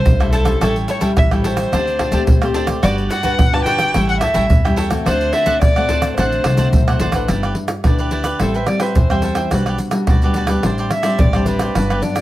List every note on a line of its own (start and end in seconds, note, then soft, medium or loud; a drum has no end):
0.00 0.14 G3 medium
0.00 0.14 A3 medium
0.00 0.14 E4 medium
0.00 0.29 C5 medium
0.05 0.53 B1 loud
0.05 0.58 G2 medium
0.05 pandeiro medium
0.05 shaker medium
0.05 surdo loud
0.20 0.43 G3 medium
0.20 0.43 A3 medium
0.20 0.43 E4 medium
0.20 0.32 A4 soft
0.20 0.32 C5 soft
0.20 0.32 E5 medium
0.20 pandeiro soft
0.20 tamborim medium
0.20 shaker soft
0.33 0.46 E4 medium
0.33 0.45 A4 medium
0.33 0.59 A4 medium
0.33 0.44 C5 medium
0.33 0.43 E5 medium
0.33 pandeiro medium
0.33 shaker medium
0.45 0.98 G3 medium
0.45 0.98 C#4 medium
0.45 0.98 E4 medium
0.45 0.59 A4 soft
0.45 0.59 C5 soft
0.45 0.59 E5 soft
0.45 pandeiro medium
0.45 tamborim medium
0.45 shaker medium
0.45 surdo soft
0.61 0.85 A1 medium
0.61 1.14 A2 medium
0.61 0.87 E4 medium
0.61 0.88 A4 medium
0.61 0.75 A4 medium
0.61 0.88 C#5 medium
0.61 0.89 G5 medium
0.61 pandeiro medium
0.61 tamborim medium
0.61 shaker medium
0.61 surdo medium
0.76 pandeiro soft
0.76 shaker soft
0.88 1.00 E4 medium
0.88 1.00 A4 medium
0.88 1.02 C#5 medium
0.88 1.01 C#5 medium
0.88 1.01 G5 medium
0.88 pandeiro medium
0.88 shaker medium
1.01 1.25 G3 medium
1.01 1.25 C#4 medium
1.01 1.11 E4 medium
1.01 1.26 E4 medium
1.01 1.11 A4 medium
1.01 1.11 C#5 medium
1.01 1.11 G5 medium
1.01 pandeiro medium
1.01 shaker medium
1.01 surdo soft
1.17 1.64 A1 medium
1.17 1.69 E3 medium
1.17 1.30 E5 loud
1.17 pandeiro medium
1.17 tamborim medium
1.17 shaker medium
1.17 surdo loud
1.31 1.68 G3 medium
1.31 1.68 C#4 medium
1.31 1.69 E4 medium
1.31 1.44 A4 soft
1.31 1.44 C#5 soft
1.31 1.44 G5 soft
1.31 pandeiro soft
1.31 tamborim medium
1.31 shaker soft
1.44 1.71 E4 medium
1.44 1.71 A4 medium
1.44 2.52 C5 medium
1.44 1.72 C#5 medium
1.44 1.72 G5 medium
1.44 pandeiro medium
1.44 shaker medium
1.44 surdo soft
1.57 pandeiro medium
1.57 tamborim medium
1.57 shaker medium
1.72 1.96 D2 medium
1.72 2.25 D3 medium
1.72 2.10 A3 medium
1.72 2.10 C4 soft
1.72 1.98 D4 medium
1.72 2.10 G4 medium
1.72 1.99 G4 medium
1.72 1.99 C5 medium
1.72 2.00 D5 medium
1.72 pandeiro medium
1.72 tamborim medium
1.72 shaker medium
1.72 surdo medium
1.87 pandeiro soft
1.87 shaker soft
1.99 2.11 D4 soft
1.99 2.12 G4 medium
1.99 2.12 C5 medium
1.99 2.12 D5 medium
1.99 pandeiro medium
1.99 tamborim medium
1.99 surdo soft
2.11 2.24 D2 medium
2.11 2.36 A3 medium
2.11 2.36 C4 medium
2.11 2.22 D4 medium
2.11 2.37 G4 medium
2.11 2.23 G4 medium
2.11 2.23 C5 medium
2.11 2.23 D5 medium
2.11 pandeiro medium
2.11 shaker medium
2.11 surdo soft
2.27 2.75 D2 medium
2.27 2.81 A2 medium
2.27 pandeiro medium
2.27 shaker medium
2.27 surdo medium
2.42 2.79 A3 medium
2.42 2.80 C4 medium
2.42 2.80 G4 medium
2.42 2.54 G4 soft
2.42 2.55 C5 soft
2.42 2.55 D5 soft
2.42 pandeiro soft
2.42 tamborim medium
2.42 shaker soft
2.54 2.68 D4 medium
2.54 2.68 G4 medium
2.54 2.68 C5 medium
2.54 2.67 D5 medium
2.54 pandeiro medium
2.67 2.83 G4 soft
2.67 2.82 C5 soft
2.67 2.82 D5 soft
2.67 pandeiro medium
2.67 tamborim medium
2.67 shaker medium
2.67 surdo soft
2.83 3.07 G1 medium
2.83 3.36 G3 medium
2.83 3.09 D4 medium
2.83 3.10 F#4 medium
2.83 3.09 F#4 medium
2.83 3.10 G4 medium
2.83 3.10 B4 medium
2.83 2.95 D5 medium
2.83 3.11 D5 medium
2.83 pandeiro medium
2.83 tamborim medium
2.83 shaker medium
2.83 surdo medium
2.98 pandeiro soft
2.98 shaker soft
3.10 3.23 F#4 soft
3.10 3.23 G4 medium
3.10 3.23 B4 medium
3.10 3.24 D5 medium
3.10 3.55 F#5 loud
3.10 pandeiro medium
3.10 shaker medium
3.23 3.47 D4 medium
3.23 3.48 F#4 medium
3.23 3.34 F#4 medium
3.23 3.34 G4 medium
3.23 3.48 B4 medium
3.23 3.34 B4 medium
3.23 3.34 D5 medium
3.23 pandeiro medium
3.23 shaker medium
3.23 surdo soft
3.38 3.86 G1 medium
3.38 3.92 D3 medium
3.38 pandeiro medium
3.38 tamborim medium
3.38 shaker medium
3.38 surdo loud
3.53 3.90 D4 medium
3.53 3.90 F#4 medium
3.53 3.65 G4 soft
3.53 3.91 B4 medium
3.53 3.66 B4 soft
3.53 3.67 D5 soft
3.53 3.64 A5 medium
3.53 pandeiro soft
3.53 tamborim medium
3.53 shaker soft
3.65 3.93 F#4 medium
3.65 3.93 G4 medium
3.65 3.94 B4 medium
3.65 3.94 D5 medium
3.65 4.05 G5 loud
3.65 pandeiro medium
3.65 shaker medium
3.65 surdo soft
3.79 pandeiro medium
3.79 tamborim medium
3.79 shaker medium
3.94 4.19 A1 medium
3.94 4.48 A2 medium
3.94 4.21 G3 medium
3.94 4.21 C#4 medium
3.94 4.20 E4 medium
3.94 4.21 E4 medium
3.94 4.21 A4 medium
3.94 4.22 C#5 medium
3.94 4.22 G5 medium
3.94 pandeiro medium
3.94 tamborim medium
3.94 shaker medium
3.94 surdo medium
4.09 4.20 F#5 medium
4.09 pandeiro soft
4.09 shaker soft
4.20 4.33 E4 soft
4.20 4.34 A4 medium
4.20 4.34 C#5 medium
4.20 4.73 E5 medium
4.20 4.34 G5 medium
4.20 pandeiro medium
4.20 tamborim medium
4.20 shaker medium
4.20 surdo soft
4.34 4.47 A1 medium
4.34 4.59 G3 medium
4.34 4.59 C#4 medium
4.34 4.59 E4 medium
4.34 4.45 E4 medium
4.34 4.45 A4 medium
4.34 4.45 C#5 medium
4.34 4.45 G5 medium
4.34 pandeiro medium
4.34 shaker medium
4.34 surdo soft
4.50 4.98 E2 medium
4.50 5.03 E3 medium
4.50 pandeiro medium
4.50 shaker medium
4.50 surdo loud
4.65 4.88 G3 medium
4.65 4.89 C#4 medium
4.65 4.89 E4 medium
4.65 4.76 A4 soft
4.65 4.76 C#5 soft
4.65 4.77 G5 medium
4.65 pandeiro soft
4.65 tamborim medium
4.65 shaker soft
4.76 4.90 E4 medium
4.76 4.90 A4 medium
4.76 4.90 C#5 medium
4.76 4.89 G5 medium
4.76 pandeiro medium
4.76 shaker medium
4.90 5.43 A3 medium
4.90 5.43 C4 medium
4.90 5.43 F#4 medium
4.90 5.05 A4 soft
4.90 5.05 C#5 soft
4.90 5.04 G5 soft
4.90 pandeiro medium
4.90 tamborim medium
4.90 shaker medium
4.90 surdo soft
5.06 5.30 D2 medium
5.06 5.59 D3 medium
5.06 5.32 D4 medium
5.06 5.34 C5 medium
5.06 5.33 C5 medium
5.06 5.33 D5 medium
5.06 5.34 F#5 medium
5.06 pandeiro medium
5.06 tamborim medium
5.06 shaker medium
5.06 surdo medium
5.21 pandeiro soft
5.21 shaker soft
5.33 5.45 D4 soft
5.33 5.45 C5 medium
5.33 5.45 D5 medium
5.33 5.61 E5 medium
5.33 5.46 F#5 medium
5.33 pandeiro medium
5.46 5.70 A3 medium
5.46 5.71 C4 medium
5.46 5.56 D4 medium
5.46 5.71 F#4 medium
5.46 5.56 C5 medium
5.46 5.56 D5 medium
5.46 5.56 F#5 medium
5.46 pandeiro medium
5.46 shaker medium
5.46 surdo soft
5.61 6.09 D2 medium
5.61 6.15 A2 medium
5.61 6.14 D5 loud
5.61 pandeiro medium
5.61 tamborim medium
5.61 shaker medium
5.61 surdo medium
5.76 6.14 A3 medium
5.76 6.14 C4 medium
5.76 6.14 F#4 medium
5.76 5.89 C5 soft
5.76 5.89 D5 soft
5.76 5.89 F#5 soft
5.76 pandeiro soft
5.76 tamborim medium
5.76 shaker soft
5.89 6.16 D4 medium
5.89 6.17 C5 medium
5.89 6.17 D5 medium
5.89 6.17 F#5 medium
5.89 pandeiro medium
5.89 shaker medium
5.89 surdo soft
6.02 pandeiro medium
6.02 tamborim medium
6.02 shaker medium
6.17 6.41 A1 medium
6.17 6.71 D3 medium
6.17 6.55 A3 medium
6.17 6.55 C4 soft
6.17 6.43 D4 medium
6.17 6.55 F#4 medium
6.17 6.97 C5 medium
6.17 6.45 C5 medium
6.17 6.45 D5 medium
6.17 6.46 F#5 medium
6.17 pandeiro medium
6.17 tamborim medium
6.17 shaker medium
6.17 surdo medium
6.32 pandeiro soft
6.32 shaker soft
6.44 6.70 C2 medium
6.44 6.57 D4 soft
6.44 6.57 C5 soft
6.44 6.58 D5 soft
6.44 6.58 F#5 medium
6.44 pandeiro medium
6.44 tamborim medium
6.57 6.82 A3 medium
6.57 6.82 C4 medium
6.57 6.68 D4 medium
6.57 6.82 F#4 medium
6.57 6.68 C5 medium
6.57 6.68 D5 medium
6.57 6.68 F#5 medium
6.57 pandeiro medium
6.57 shaker medium
6.57 surdo soft
6.72 6.98 B1 medium
6.72 7.26 A2 medium
6.72 pandeiro medium
6.72 shaker medium
6.72 surdo loud
6.88 7.11 A3 medium
6.88 7.11 C4 medium
6.88 7.11 F#4 medium
6.88 7.00 C5 soft
6.88 7.00 D5 soft
6.88 7.00 F#5 soft
6.88 pandeiro soft
6.88 tamborim medium
6.88 shaker soft
7.00 7.26 A1 medium
7.00 7.13 D4 medium
7.00 7.14 C5 medium
7.00 7.14 D5 medium
7.00 7.13 F#5 medium
7.00 pandeiro medium
7.00 shaker medium
7.12 7.66 D4 medium
7.12 7.66 E4 medium
7.12 7.66 B4 medium
7.12 7.28 C5 soft
7.12 7.28 D5 soft
7.12 7.28 F#5 soft
7.12 pandeiro medium
7.12 tamborim medium
7.12 shaker medium
7.12 surdo soft
7.28 7.53 G1 medium
7.28 7.82 G3 medium
7.28 7.42 E4 soft
7.28 7.42 G4 soft
7.28 7.42 B4 soft
7.28 7.42 D5 medium
7.28 pandeiro medium
7.28 tamborim medium
7.28 shaker medium
7.28 surdo medium
7.43 7.55 G4 soft
7.43 7.56 B4 medium
7.43 7.56 D5 medium
7.43 pandeiro soft
7.43 tamborim medium
7.43 shaker soft
7.55 muted cavaquinho stroke soft
7.55 pandeiro medium
7.68 pandeiro medium
7.68 tamborim medium
7.68 shaker medium
7.84 8.32 D2 medium
7.84 8.38 D3 medium
7.84 8.20 D4 soft
7.84 8.21 E4 soft
7.84 7.98 E4 soft
7.84 7.98 G4 soft
7.84 8.21 B4 medium
7.84 7.98 B4 soft
7.84 7.98 D5 soft
7.84 pandeiro medium
7.84 tamborim medium
7.84 shaker medium
7.84 surdo medium
7.99 8.10 G4 soft
7.99 8.11 B4 medium
7.99 8.11 D5 medium
7.99 pandeiro soft
7.99 shaker soft
8.11 8.25 E4 medium
8.11 8.24 G4 medium
8.11 8.24 B4 medium
8.11 8.23 D5 medium
8.11 pandeiro medium
8.11 shaker medium
8.24 8.39 G4 soft
8.24 8.39 B4 medium
8.24 8.38 D5 medium
8.24 pandeiro medium
8.24 tamborim medium
8.24 shaker medium
8.40 8.64 A1 medium
8.40 8.93 A2 soft
8.40 8.57 G3 soft
8.40 8.57 C4 soft
8.40 8.57 E4 medium
8.40 8.57 A4 medium
8.40 8.53 A4 soft
8.40 8.54 C5 medium
8.40 8.54 E5 soft
8.40 8.54 G5 medium
8.40 pandeiro medium
8.40 tamborim medium
8.40 shaker medium
8.40 surdo medium
8.54 8.69 B4 medium
8.54 8.67 C5 soft
8.54 8.67 E5 medium
8.54 8.67 G5 medium
8.54 pandeiro soft
8.54 shaker soft
8.66 8.94 G3 medium
8.66 8.94 C4 medium
8.66 8.94 E4 medium
8.66 8.83 D5 medium
8.66 muted cavaquinho stroke soft
8.66 pandeiro medium
8.66 tamborim medium
8.66 shaker medium
8.80 8.98 B4 medium
8.80 9.09 C5 medium
8.80 9.09 E5 medium
8.80 9.08 G5 medium
8.80 pandeiro medium
8.80 tamborim medium
8.80 shaker medium
8.95 9.44 E2 medium
8.95 9.49 E3 medium
8.95 9.52 C5 medium
8.95 pandeiro medium
8.95 shaker medium
8.95 surdo medium
9.10 9.48 G3 medium
9.10 9.48 C4 medium
9.10 9.48 E4 medium
9.10 9.23 C5 medium
9.10 9.23 E5 medium
9.10 9.24 G5 medium
9.10 pandeiro soft
9.10 tamborim medium
9.10 shaker soft
9.22 9.37 A4 soft
9.22 9.37 C5 soft
9.22 9.36 E5 medium
9.22 9.35 G5 medium
9.22 pandeiro medium
9.22 shaker medium
9.35 9.51 C5 soft
9.35 9.51 E5 medium
9.35 9.50 G5 medium
9.35 pandeiro medium
9.35 tamborim medium
9.35 shaker medium
9.51 9.76 B1 medium
9.51 10.05 B2 medium
9.51 9.89 G3 medium
9.51 9.89 D4 medium
9.51 9.90 F#4 medium
9.51 9.65 F#4 soft
9.51 9.66 G4 soft
9.51 9.66 B4 medium
9.51 9.66 D5 soft
9.51 pandeiro medium
9.51 tamborim medium
9.51 shaker medium
9.51 surdo medium
9.66 9.78 G4 soft
9.66 9.79 B4 medium
9.66 9.79 D5 medium
9.66 pandeiro soft
9.66 tamborim medium
9.66 shaker soft
9.78 muted cavaquinho stroke soft
9.78 pandeiro soft
9.78 shaker medium
9.91 10.16 G3 medium
9.91 10.16 D4 medium
9.91 10.16 F#4 medium
9.91 pandeiro medium
9.91 tamborim medium
9.91 shaker medium
10.07 10.55 D2 medium
10.07 10.61 B2 soft
10.07 10.21 F#4 soft
10.07 10.22 G4 soft
10.07 10.22 B4 medium
10.07 10.22 D5 medium
10.07 pandeiro medium
10.07 tamborim medium
10.07 shaker medium
10.07 surdo medium
10.22 10.46 G3 medium
10.22 10.46 D4 medium
10.22 10.46 F#4 medium
10.22 10.36 G4 soft
10.22 10.36 B4 medium
10.22 10.36 D5 medium
10.22 pandeiro soft
10.22 shaker soft
10.34 10.49 F#4 medium
10.34 10.49 G4 medium
10.34 10.48 B4 medium
10.34 10.48 D5 medium
10.34 pandeiro medium
10.34 shaker medium
10.47 11.00 G3 medium
10.47 11.00 C4 medium
10.47 11.01 D4 medium
10.47 10.63 G4 medium
10.47 10.63 B4 medium
10.47 10.62 D5 medium
10.47 pandeiro medium
10.47 tamborim medium
10.47 shaker medium
10.63 10.88 A1 medium
10.63 11.17 A2 soft
10.63 10.77 D4 soft
10.63 10.77 G4 medium
10.63 10.78 C5 soft
10.63 10.78 D5 medium
10.63 pandeiro medium
10.63 tamborim medium
10.63 shaker medium
10.63 surdo medium
10.78 10.91 G4 medium
10.78 10.91 C5 medium
10.78 10.91 D5 medium
10.78 pandeiro soft
10.78 shaker soft
10.91 11.21 E5 medium
10.91 muted cavaquinho stroke soft
10.91 pandeiro medium
10.91 tamborim medium
10.91 shaker medium
11.03 11.28 G3 medium
11.03 11.28 C4 medium
11.03 11.28 D4 medium
11.03 11.32 G4 medium
11.03 11.32 C5 medium
11.03 11.31 D5 medium
11.03 pandeiro medium
11.03 tamborim medium
11.03 shaker medium
11.19 11.67 A1 medium
11.19 11.73 A2 medium
11.19 11.46 D5 medium
11.19 pandeiro medium
11.19 shaker medium
11.19 surdo loud
11.33 11.71 G3 medium
11.33 11.72 C4 medium
11.33 11.72 D4 medium
11.33 11.46 G4 medium
11.33 11.47 C5 medium
11.33 11.47 D5 medium
11.33 pandeiro soft
11.33 tamborim medium
11.33 shaker soft
11.46 11.60 D4 soft
11.46 11.60 G4 soft
11.46 12.04 B4 medium
11.46 11.60 C5 soft
11.46 11.59 D5 medium
11.46 pandeiro medium
11.46 shaker medium
11.59 11.75 G4 soft
11.59 11.74 C5 medium
11.59 11.74 D5 medium
11.59 pandeiro medium
11.59 tamborim medium
11.59 shaker medium
11.75 11.99 G1 medium
11.75 12.21 G2 medium
11.75 11.99 F#3 soft
11.75 11.99 B3 medium
11.75 11.99 D4 medium
11.75 11.88 F#4 soft
11.75 11.89 G4 soft
11.75 11.89 B4 medium
11.75 11.89 D5 soft
11.75 pandeiro medium
11.75 tamborim medium
11.75 shaker medium
11.75 surdo medium
11.90 12.01 G4 medium
11.90 12.02 B4 medium
11.90 12.02 D5 medium
11.90 pandeiro soft
11.90 tamborim medium
11.90 shaker soft
12.02 12.21 F#3 medium
12.02 12.21 B3 medium
12.02 12.21 D4 medium
12.02 12.21 D5 medium
12.02 muted cavaquinho stroke soft
12.02 pandeiro medium
12.02 shaker medium
12.16 pandeiro medium
12.16 tamborim medium
12.16 shaker medium